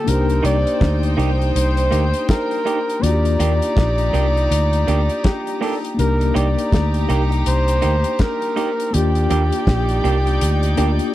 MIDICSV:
0, 0, Header, 1, 8, 480
1, 0, Start_track
1, 0, Key_signature, -3, "minor"
1, 0, Tempo, 738462
1, 48, Time_signature, 4, 2, 24, 8
1, 7244, End_track
2, 0, Start_track
2, 0, Title_t, "Flugelhorn"
2, 0, Program_c, 0, 56
2, 55, Note_on_c, 0, 70, 109
2, 292, Note_off_c, 0, 70, 0
2, 297, Note_on_c, 0, 74, 111
2, 746, Note_off_c, 0, 74, 0
2, 1009, Note_on_c, 0, 72, 106
2, 1462, Note_off_c, 0, 72, 0
2, 1491, Note_on_c, 0, 70, 113
2, 1971, Note_on_c, 0, 74, 127
2, 1980, Note_off_c, 0, 70, 0
2, 3414, Note_on_c, 0, 67, 100
2, 3424, Note_off_c, 0, 74, 0
2, 3651, Note_off_c, 0, 67, 0
2, 3660, Note_on_c, 0, 69, 88
2, 3764, Note_off_c, 0, 69, 0
2, 3898, Note_on_c, 0, 70, 111
2, 4133, Note_on_c, 0, 74, 99
2, 4143, Note_off_c, 0, 70, 0
2, 4610, Note_off_c, 0, 74, 0
2, 4861, Note_on_c, 0, 72, 120
2, 5340, Note_on_c, 0, 70, 109
2, 5349, Note_off_c, 0, 72, 0
2, 5813, Note_on_c, 0, 67, 116
2, 5823, Note_off_c, 0, 70, 0
2, 7244, Note_off_c, 0, 67, 0
2, 7244, End_track
3, 0, Start_track
3, 0, Title_t, "String section"
3, 0, Program_c, 1, 48
3, 47, Note_on_c, 1, 79, 103
3, 48, Note_on_c, 1, 63, 99
3, 48, Note_on_c, 1, 72, 98
3, 1941, Note_off_c, 1, 79, 0
3, 1942, Note_off_c, 1, 63, 0
3, 1942, Note_off_c, 1, 72, 0
3, 1966, Note_on_c, 1, 63, 92
3, 1967, Note_on_c, 1, 82, 104
3, 1969, Note_on_c, 1, 67, 89
3, 3860, Note_off_c, 1, 63, 0
3, 3861, Note_off_c, 1, 82, 0
3, 3862, Note_off_c, 1, 67, 0
3, 3889, Note_on_c, 1, 82, 101
3, 3891, Note_on_c, 1, 63, 83
3, 3893, Note_on_c, 1, 67, 94
3, 5782, Note_off_c, 1, 82, 0
3, 5783, Note_off_c, 1, 63, 0
3, 5784, Note_off_c, 1, 67, 0
3, 5808, Note_on_c, 1, 63, 92
3, 5808, Note_on_c, 1, 74, 88
3, 5811, Note_on_c, 1, 79, 101
3, 7244, Note_off_c, 1, 63, 0
3, 7244, Note_off_c, 1, 74, 0
3, 7244, Note_off_c, 1, 79, 0
3, 7244, End_track
4, 0, Start_track
4, 0, Title_t, "Clean electric guitar"
4, 0, Program_c, 2, 27
4, 277, Note_on_c, 2, 58, 89
4, 280, Note_on_c, 2, 63, 92
4, 283, Note_on_c, 2, 67, 87
4, 361, Note_off_c, 2, 58, 0
4, 362, Note_off_c, 2, 63, 0
4, 364, Note_off_c, 2, 67, 0
4, 760, Note_on_c, 2, 58, 78
4, 763, Note_on_c, 2, 63, 96
4, 766, Note_on_c, 2, 67, 97
4, 842, Note_off_c, 2, 58, 0
4, 844, Note_off_c, 2, 63, 0
4, 845, Note_off_c, 2, 67, 0
4, 1239, Note_on_c, 2, 58, 87
4, 1243, Note_on_c, 2, 63, 82
4, 1246, Note_on_c, 2, 67, 93
4, 1322, Note_off_c, 2, 58, 0
4, 1323, Note_off_c, 2, 63, 0
4, 1325, Note_off_c, 2, 67, 0
4, 1724, Note_on_c, 2, 58, 73
4, 1728, Note_on_c, 2, 63, 88
4, 1732, Note_on_c, 2, 67, 95
4, 1804, Note_off_c, 2, 58, 0
4, 1806, Note_off_c, 2, 63, 0
4, 1808, Note_off_c, 2, 67, 0
4, 2207, Note_on_c, 2, 58, 96
4, 2210, Note_on_c, 2, 62, 89
4, 2213, Note_on_c, 2, 67, 99
4, 2286, Note_off_c, 2, 58, 0
4, 2287, Note_off_c, 2, 62, 0
4, 2288, Note_off_c, 2, 67, 0
4, 2685, Note_on_c, 2, 58, 79
4, 2690, Note_on_c, 2, 62, 88
4, 2692, Note_on_c, 2, 67, 90
4, 2765, Note_off_c, 2, 58, 0
4, 2767, Note_off_c, 2, 62, 0
4, 2768, Note_off_c, 2, 67, 0
4, 3168, Note_on_c, 2, 58, 85
4, 3172, Note_on_c, 2, 62, 90
4, 3177, Note_on_c, 2, 67, 89
4, 3246, Note_off_c, 2, 58, 0
4, 3248, Note_off_c, 2, 62, 0
4, 3250, Note_off_c, 2, 67, 0
4, 3645, Note_on_c, 2, 58, 81
4, 3649, Note_on_c, 2, 62, 96
4, 3651, Note_on_c, 2, 67, 92
4, 3724, Note_off_c, 2, 58, 0
4, 3727, Note_off_c, 2, 62, 0
4, 3728, Note_off_c, 2, 67, 0
4, 4122, Note_on_c, 2, 58, 90
4, 4125, Note_on_c, 2, 63, 88
4, 4127, Note_on_c, 2, 67, 104
4, 4203, Note_off_c, 2, 58, 0
4, 4204, Note_off_c, 2, 63, 0
4, 4205, Note_off_c, 2, 67, 0
4, 4606, Note_on_c, 2, 58, 88
4, 4610, Note_on_c, 2, 63, 87
4, 4614, Note_on_c, 2, 67, 94
4, 4685, Note_off_c, 2, 58, 0
4, 4687, Note_off_c, 2, 63, 0
4, 4689, Note_off_c, 2, 67, 0
4, 5082, Note_on_c, 2, 58, 81
4, 5084, Note_on_c, 2, 63, 89
4, 5086, Note_on_c, 2, 67, 80
4, 5163, Note_off_c, 2, 58, 0
4, 5164, Note_off_c, 2, 63, 0
4, 5165, Note_off_c, 2, 67, 0
4, 5565, Note_on_c, 2, 58, 86
4, 5567, Note_on_c, 2, 63, 105
4, 5569, Note_on_c, 2, 67, 86
4, 5644, Note_off_c, 2, 58, 0
4, 5645, Note_off_c, 2, 63, 0
4, 5646, Note_off_c, 2, 67, 0
4, 6045, Note_on_c, 2, 58, 77
4, 6049, Note_on_c, 2, 62, 93
4, 6050, Note_on_c, 2, 67, 98
4, 6124, Note_off_c, 2, 58, 0
4, 6126, Note_off_c, 2, 62, 0
4, 6127, Note_off_c, 2, 67, 0
4, 6526, Note_on_c, 2, 58, 83
4, 6526, Note_on_c, 2, 62, 89
4, 6531, Note_on_c, 2, 67, 90
4, 6605, Note_off_c, 2, 58, 0
4, 6605, Note_off_c, 2, 62, 0
4, 6607, Note_off_c, 2, 67, 0
4, 7003, Note_on_c, 2, 58, 82
4, 7005, Note_on_c, 2, 62, 82
4, 7010, Note_on_c, 2, 67, 92
4, 7083, Note_off_c, 2, 58, 0
4, 7084, Note_off_c, 2, 62, 0
4, 7087, Note_off_c, 2, 67, 0
4, 7244, End_track
5, 0, Start_track
5, 0, Title_t, "Tine electric piano"
5, 0, Program_c, 3, 4
5, 0, Control_c, 3, 64, 127
5, 27, Note_on_c, 3, 58, 61
5, 41, Note_on_c, 3, 62, 68
5, 53, Note_on_c, 3, 63, 66
5, 57, Control_c, 3, 64, 0
5, 65, Note_on_c, 3, 67, 70
5, 154, Control_c, 3, 64, 127
5, 1931, Note_off_c, 3, 58, 0
5, 1938, Note_off_c, 3, 62, 0
5, 1944, Note_off_c, 3, 63, 0
5, 1948, Note_on_c, 3, 58, 67
5, 1950, Note_off_c, 3, 67, 0
5, 1963, Note_on_c, 3, 62, 61
5, 1975, Note_on_c, 3, 65, 61
5, 1977, Control_c, 3, 64, 0
5, 1987, Note_on_c, 3, 66, 62
5, 2028, Note_off_c, 3, 66, 0
5, 2029, Note_on_c, 3, 67, 75
5, 2079, Control_c, 3, 64, 127
5, 3851, Note_off_c, 3, 58, 0
5, 3859, Note_off_c, 3, 62, 0
5, 3864, Note_on_c, 3, 58, 66
5, 3865, Note_off_c, 3, 65, 0
5, 3879, Note_on_c, 3, 62, 64
5, 3892, Note_off_c, 3, 67, 0
5, 3892, Note_on_c, 3, 63, 59
5, 3895, Control_c, 3, 64, 0
5, 3904, Note_on_c, 3, 67, 66
5, 4002, Control_c, 3, 64, 127
5, 5769, Note_off_c, 3, 58, 0
5, 5777, Note_off_c, 3, 62, 0
5, 5783, Note_off_c, 3, 63, 0
5, 5790, Note_off_c, 3, 67, 0
5, 5790, Note_on_c, 3, 58, 66
5, 5803, Note_on_c, 3, 62, 63
5, 5815, Control_c, 3, 64, 0
5, 5816, Note_on_c, 3, 65, 64
5, 5830, Note_on_c, 3, 67, 76
5, 5914, Control_c, 3, 64, 127
5, 6974, Note_off_c, 3, 58, 0
5, 6981, Note_off_c, 3, 62, 0
5, 6988, Note_off_c, 3, 65, 0
5, 6995, Note_off_c, 3, 67, 0
5, 6996, Note_on_c, 3, 58, 63
5, 7002, Note_on_c, 3, 62, 58
5, 7010, Note_on_c, 3, 65, 55
5, 7016, Note_on_c, 3, 67, 71
5, 7244, Note_off_c, 3, 58, 0
5, 7244, Note_off_c, 3, 62, 0
5, 7244, Note_off_c, 3, 65, 0
5, 7244, Note_off_c, 3, 67, 0
5, 7244, End_track
6, 0, Start_track
6, 0, Title_t, "Fingered electric bass"
6, 0, Program_c, 4, 33
6, 50, Note_on_c, 4, 36, 103
6, 263, Note_off_c, 4, 36, 0
6, 286, Note_on_c, 4, 36, 103
6, 414, Note_off_c, 4, 36, 0
6, 528, Note_on_c, 4, 38, 88
6, 741, Note_off_c, 4, 38, 0
6, 764, Note_on_c, 4, 36, 97
6, 979, Note_off_c, 4, 36, 0
6, 1011, Note_on_c, 4, 36, 102
6, 1223, Note_off_c, 4, 36, 0
6, 1248, Note_on_c, 4, 38, 87
6, 1375, Note_off_c, 4, 38, 0
6, 1970, Note_on_c, 4, 39, 115
6, 2182, Note_off_c, 4, 39, 0
6, 2209, Note_on_c, 4, 39, 94
6, 2336, Note_off_c, 4, 39, 0
6, 2449, Note_on_c, 4, 34, 91
6, 2662, Note_off_c, 4, 34, 0
6, 2689, Note_on_c, 4, 36, 86
6, 2902, Note_off_c, 4, 36, 0
6, 2930, Note_on_c, 4, 38, 105
6, 3142, Note_off_c, 4, 38, 0
6, 3172, Note_on_c, 4, 38, 92
6, 3298, Note_off_c, 4, 38, 0
6, 3892, Note_on_c, 4, 36, 109
6, 4103, Note_off_c, 4, 36, 0
6, 4130, Note_on_c, 4, 36, 95
6, 4256, Note_off_c, 4, 36, 0
6, 4372, Note_on_c, 4, 38, 85
6, 4583, Note_off_c, 4, 38, 0
6, 4613, Note_on_c, 4, 36, 97
6, 4824, Note_off_c, 4, 36, 0
6, 4853, Note_on_c, 4, 36, 92
6, 5064, Note_off_c, 4, 36, 0
6, 5094, Note_on_c, 4, 38, 75
6, 5218, Note_off_c, 4, 38, 0
6, 5814, Note_on_c, 4, 39, 110
6, 6024, Note_off_c, 4, 39, 0
6, 6050, Note_on_c, 4, 39, 97
6, 6176, Note_off_c, 4, 39, 0
6, 6286, Note_on_c, 4, 34, 91
6, 6500, Note_off_c, 4, 34, 0
6, 6530, Note_on_c, 4, 36, 85
6, 6742, Note_off_c, 4, 36, 0
6, 6771, Note_on_c, 4, 38, 99
6, 6982, Note_off_c, 4, 38, 0
6, 7008, Note_on_c, 4, 38, 92
6, 7135, Note_off_c, 4, 38, 0
6, 7244, End_track
7, 0, Start_track
7, 0, Title_t, "Muted clean electric guitar strokes"
7, 905, Note_on_c, 9, 29, 46
7, 970, Note_off_c, 9, 29, 0
7, 2835, Note_on_c, 9, 29, 53
7, 2900, Note_off_c, 9, 29, 0
7, 4745, Note_on_c, 9, 29, 48
7, 4810, Note_off_c, 9, 29, 0
7, 6668, Note_on_c, 9, 29, 50
7, 6733, Note_off_c, 9, 29, 0
7, 7244, End_track
8, 0, Start_track
8, 0, Title_t, "Drums"
8, 49, Note_on_c, 9, 42, 93
8, 114, Note_off_c, 9, 42, 0
8, 192, Note_on_c, 9, 42, 51
8, 257, Note_off_c, 9, 42, 0
8, 290, Note_on_c, 9, 42, 81
8, 355, Note_off_c, 9, 42, 0
8, 435, Note_on_c, 9, 42, 54
8, 500, Note_off_c, 9, 42, 0
8, 527, Note_on_c, 9, 36, 112
8, 531, Note_on_c, 9, 42, 85
8, 534, Note_on_c, 9, 38, 94
8, 592, Note_off_c, 9, 36, 0
8, 596, Note_off_c, 9, 42, 0
8, 599, Note_off_c, 9, 38, 0
8, 671, Note_on_c, 9, 42, 55
8, 736, Note_off_c, 9, 42, 0
8, 776, Note_on_c, 9, 42, 65
8, 841, Note_off_c, 9, 42, 0
8, 920, Note_on_c, 9, 42, 44
8, 985, Note_off_c, 9, 42, 0
8, 1015, Note_on_c, 9, 42, 108
8, 1080, Note_off_c, 9, 42, 0
8, 1152, Note_on_c, 9, 42, 62
8, 1217, Note_off_c, 9, 42, 0
8, 1249, Note_on_c, 9, 42, 73
8, 1314, Note_off_c, 9, 42, 0
8, 1388, Note_on_c, 9, 42, 47
8, 1453, Note_off_c, 9, 42, 0
8, 1487, Note_on_c, 9, 42, 97
8, 1488, Note_on_c, 9, 36, 109
8, 1493, Note_on_c, 9, 38, 101
8, 1552, Note_off_c, 9, 42, 0
8, 1553, Note_off_c, 9, 36, 0
8, 1558, Note_off_c, 9, 38, 0
8, 1632, Note_on_c, 9, 42, 51
8, 1697, Note_off_c, 9, 42, 0
8, 1734, Note_on_c, 9, 42, 63
8, 1799, Note_off_c, 9, 42, 0
8, 1882, Note_on_c, 9, 42, 56
8, 1947, Note_off_c, 9, 42, 0
8, 1973, Note_on_c, 9, 42, 97
8, 2038, Note_off_c, 9, 42, 0
8, 2114, Note_on_c, 9, 42, 55
8, 2179, Note_off_c, 9, 42, 0
8, 2210, Note_on_c, 9, 42, 82
8, 2275, Note_off_c, 9, 42, 0
8, 2354, Note_on_c, 9, 42, 57
8, 2419, Note_off_c, 9, 42, 0
8, 2448, Note_on_c, 9, 36, 112
8, 2452, Note_on_c, 9, 42, 83
8, 2455, Note_on_c, 9, 38, 102
8, 2513, Note_off_c, 9, 36, 0
8, 2517, Note_off_c, 9, 42, 0
8, 2520, Note_off_c, 9, 38, 0
8, 2588, Note_on_c, 9, 42, 58
8, 2653, Note_off_c, 9, 42, 0
8, 2692, Note_on_c, 9, 42, 73
8, 2757, Note_off_c, 9, 42, 0
8, 2841, Note_on_c, 9, 42, 48
8, 2906, Note_off_c, 9, 42, 0
8, 2935, Note_on_c, 9, 42, 119
8, 3000, Note_off_c, 9, 42, 0
8, 3074, Note_on_c, 9, 42, 60
8, 3139, Note_off_c, 9, 42, 0
8, 3171, Note_on_c, 9, 42, 65
8, 3236, Note_off_c, 9, 42, 0
8, 3311, Note_on_c, 9, 42, 52
8, 3376, Note_off_c, 9, 42, 0
8, 3407, Note_on_c, 9, 42, 95
8, 3410, Note_on_c, 9, 36, 117
8, 3414, Note_on_c, 9, 38, 97
8, 3472, Note_off_c, 9, 42, 0
8, 3475, Note_off_c, 9, 36, 0
8, 3479, Note_off_c, 9, 38, 0
8, 3556, Note_on_c, 9, 42, 60
8, 3621, Note_off_c, 9, 42, 0
8, 3656, Note_on_c, 9, 46, 63
8, 3721, Note_off_c, 9, 46, 0
8, 3800, Note_on_c, 9, 42, 59
8, 3865, Note_off_c, 9, 42, 0
8, 3893, Note_on_c, 9, 42, 90
8, 3958, Note_off_c, 9, 42, 0
8, 4037, Note_on_c, 9, 42, 55
8, 4102, Note_off_c, 9, 42, 0
8, 4135, Note_on_c, 9, 42, 81
8, 4200, Note_off_c, 9, 42, 0
8, 4280, Note_on_c, 9, 42, 56
8, 4345, Note_off_c, 9, 42, 0
8, 4371, Note_on_c, 9, 36, 100
8, 4377, Note_on_c, 9, 42, 88
8, 4380, Note_on_c, 9, 38, 93
8, 4436, Note_off_c, 9, 36, 0
8, 4442, Note_off_c, 9, 42, 0
8, 4445, Note_off_c, 9, 38, 0
8, 4512, Note_on_c, 9, 42, 63
8, 4577, Note_off_c, 9, 42, 0
8, 4612, Note_on_c, 9, 42, 66
8, 4677, Note_off_c, 9, 42, 0
8, 4758, Note_on_c, 9, 42, 50
8, 4823, Note_off_c, 9, 42, 0
8, 4850, Note_on_c, 9, 42, 107
8, 4915, Note_off_c, 9, 42, 0
8, 4991, Note_on_c, 9, 42, 67
8, 5056, Note_off_c, 9, 42, 0
8, 5084, Note_on_c, 9, 42, 76
8, 5149, Note_off_c, 9, 42, 0
8, 5226, Note_on_c, 9, 42, 47
8, 5291, Note_off_c, 9, 42, 0
8, 5323, Note_on_c, 9, 42, 83
8, 5327, Note_on_c, 9, 36, 109
8, 5330, Note_on_c, 9, 38, 110
8, 5388, Note_off_c, 9, 42, 0
8, 5392, Note_off_c, 9, 36, 0
8, 5395, Note_off_c, 9, 38, 0
8, 5472, Note_on_c, 9, 42, 56
8, 5537, Note_off_c, 9, 42, 0
8, 5571, Note_on_c, 9, 42, 65
8, 5636, Note_off_c, 9, 42, 0
8, 5719, Note_on_c, 9, 42, 66
8, 5784, Note_off_c, 9, 42, 0
8, 5810, Note_on_c, 9, 42, 95
8, 5875, Note_off_c, 9, 42, 0
8, 5950, Note_on_c, 9, 42, 53
8, 6015, Note_off_c, 9, 42, 0
8, 6048, Note_on_c, 9, 42, 85
8, 6113, Note_off_c, 9, 42, 0
8, 6190, Note_on_c, 9, 42, 59
8, 6255, Note_off_c, 9, 42, 0
8, 6286, Note_on_c, 9, 36, 106
8, 6286, Note_on_c, 9, 42, 84
8, 6290, Note_on_c, 9, 38, 104
8, 6351, Note_off_c, 9, 36, 0
8, 6351, Note_off_c, 9, 42, 0
8, 6355, Note_off_c, 9, 38, 0
8, 6426, Note_on_c, 9, 42, 56
8, 6491, Note_off_c, 9, 42, 0
8, 6532, Note_on_c, 9, 42, 67
8, 6597, Note_off_c, 9, 42, 0
8, 6674, Note_on_c, 9, 42, 49
8, 6739, Note_off_c, 9, 42, 0
8, 6768, Note_on_c, 9, 42, 112
8, 6833, Note_off_c, 9, 42, 0
8, 6908, Note_on_c, 9, 42, 65
8, 6973, Note_off_c, 9, 42, 0
8, 7003, Note_on_c, 9, 42, 78
8, 7068, Note_off_c, 9, 42, 0
8, 7144, Note_on_c, 9, 42, 52
8, 7209, Note_off_c, 9, 42, 0
8, 7244, End_track
0, 0, End_of_file